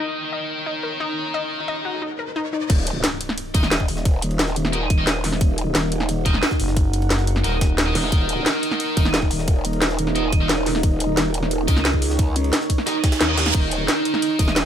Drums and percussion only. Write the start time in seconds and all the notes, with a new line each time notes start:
2.70 kick, closed hi-hat, crash, ride
2.87 closed hi-hat, ride
3.04 snare, closed hi-hat, ride
3.21 closed hi-hat, ride
3.29 snare
3.38 closed hi-hat, ride
3.54 kick, closed hi-hat, open hi-hat
3.63 snare
3.71 snare, closed hi-hat, ride
3.80 kick
3.88 open hi-hat, ride
3.97 snare
4.05 kick, closed hi-hat, ride
4.22 closed hi-hat, ride
4.31 ride
4.39 snare, closed hi-hat, ride
4.48 snare
4.56 closed hi-hat, ride
4.65 snare
4.73 closed hi-hat
4.90 kick, closed hi-hat, ride
5.07 snare, closed hi-hat, ride
5.24 snare, open hi-hat, ride
5.32 snare
5.41 kick, closed hi-hat, ride
5.58 closed hi-hat, ride
5.75 snare, closed hi-hat, ride
5.92 closed hi-hat, ride
6.00 snare
6.09 closed hi-hat, ride
6.26 kick, closed hi-hat, ride
6.34 snare
6.43 snare, closed hi-hat, open hi-hat
6.51 kick, snare
6.60 open hi-hat, ride
6.68 snare
6.77 kick, closed hi-hat, ride
6.93 closed hi-hat, ride
7.02 ride
7.10 snare, closed hi-hat, ride
7.19 snare
7.27 closed hi-hat, ride
7.36 snare
7.44 closed hi-hat, ride
7.61 kick, snare, closed hi-hat, ride
7.78 snare, closed hi-hat, ride
7.95 snare, open hi-hat, ride
8.04 snare
8.12 kick, closed hi-hat, ride
8.29 closed hi-hat, ride
8.46 snare, closed hi-hat, ride
8.63 closed hi-hat, ride
8.71 snare
8.80 closed hi-hat, ride
8.97 kick, closed hi-hat, open hi-hat
9.05 snare
9.14 snare, closed hi-hat, ride
9.22 kick
9.31 open hi-hat, ride
9.39 snare
9.48 kick, closed hi-hat, ride
9.65 closed hi-hat, ride
9.73 ride
9.82 snare, closed hi-hat, ride
9.90 snare
9.99 closed hi-hat, ride
10.07 snare
10.16 closed hi-hat
10.32 kick, closed hi-hat, ride
10.49 snare, closed hi-hat, ride
10.66 snare, open hi-hat, ride
10.75 snare
10.83 kick, closed hi-hat, ride
11.00 closed hi-hat, ride
11.17 snare, closed hi-hat, ride
11.34 closed hi-hat, ride
11.43 snare
11.51 closed hi-hat, ride
11.68 kick, closed hi-hat, open hi-hat
11.77 snare
11.85 snare, closed hi-hat, ride
11.93 kick
12.02 open hi-hat, ride
12.10 snare
12.19 kick, closed hi-hat, ride
12.36 closed hi-hat, ride
12.44 ride
12.53 snare, closed hi-hat, ride
12.61 snare
12.70 kick, closed hi-hat, ride
12.78 snare
12.87 snare, closed hi-hat, ride
13.04 kick, snare, closed hi-hat, ride
13.12 snare, ride
13.21 snare, closed hi-hat, ride
13.38 snare, open hi-hat, ride
13.46 snare, ride
13.54 kick, closed hi-hat, crash, ride
13.71 closed hi-hat, ride
13.88 snare, closed hi-hat, ride
14.05 closed hi-hat, ride
14.14 snare
14.22 closed hi-hat, ride
14.39 kick, closed hi-hat, open hi-hat
14.48 snare
14.56 snare, closed hi-hat, ride